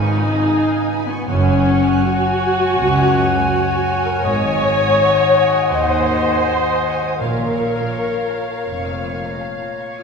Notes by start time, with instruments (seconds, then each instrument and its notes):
Already playing: double bass section G#1, cello section G#2, harp C#3 F4 G#4 B4 F5, french horn section D#4, viola section D#4, violin section B4 G#5, clarinet F5, flute G#5
0.00 harp C#4, violin section C#6
0.17 harp F4, violin section B5
0.35 harp G#4, violin section G#5
0.54 harp F5, violin section F5
0.73 harp G#4, violin section G#5
0.91 harp B4, violin section B5
1.09 viola section B3, french horn section B3, harp F4, violin section C#6
1.27 double bass section F#1, harp F#2, cello section F#2, viola section C#4, french horn section C#4, violin section C#5 F#5 G#5, clarinet F#5, flute G#5
1.46 harp C#3, violin section G#5
1.65 harp F#4, violin section C#6
1.85 harp G#4, violin section F#6
2.04 viola section F#4, french horn section F#4, harp F#5, violin section C#6
2.23 harp G#4, violin section G#5
2.41 harp F#4, violin section F#5
2.60 harp G#3, violin section G#5
2.78 cello section C#2, double bass section C#2, harp F#2, violin section C#6
2.96 harp C#3, violin section F#6
3.14 harp F#4, violin section C#6
3.32 harp G#4, violin section G#5
3.50 viola section F#4, french horn section F#4, violin section F#5, harp F#5
3.69 violin section G#5
3.87 harp F#4, violin section C#6
4.05 harp G#3, viola section A#4, french horn section A#4, violin section F#6
4.24 double bass section G#1, harp G#2, cello section G#2, viola section C#5, french horn section C#5, clarinet D#5, flute F#5, violin section F#5
4.43 harp D#3, violin section G#5
4.62 harp F#4, violin section C#6
4.81 harp G#4, violin section D#6
5.00 harp F#5, violin section C#6
5.18 harp G#4, violin section G#5
5.37 harp F#4, violin section F#5
5.54 harp G#3, violin section G#5
5.73 double bass section D#2, cello section D#2, harp G#2, viola section C5, french horn section D#5, violin section C#6
5.92 harp D#3, violin section D#6
6.09 harp F#4, violin section C#6
6.28 harp G#4, violin section G#5
6.47 harp F#5, violin section F#5
6.65 harp G#4, violin section G#5
6.84 harp F#4, violin section C#6
7.02 harp G#3, violin section D#6
7.20 double bass section A#1, harp A#2, cello section A#2, timpani A#2, french horn section A#4, viola section A#4, clarinet C#5, violin section C#5 F5, flute F5
7.38 harp A#3, violin section A#5
7.58 harp F4, violin section C#6
7.77 harp C#5, violin section F6
7.94 harp F5, violin section C#6
8.13 harp F4, violin section A#5
8.31 harp C#5, violin section F5
8.51 harp F4, violin section A#5
8.68 double bass section F1, cello section F2, harp A#2, violin section C#6
8.88 harp A#3, violin section F6
9.06 harp F4, violin section C#6
9.25 harp C#5, violin section A#5
9.43 harp F5, violin section F5
9.61 harp F4, violin section A#5
9.80 harp C#5, violin section C#6
9.99 harp F4, violin section F6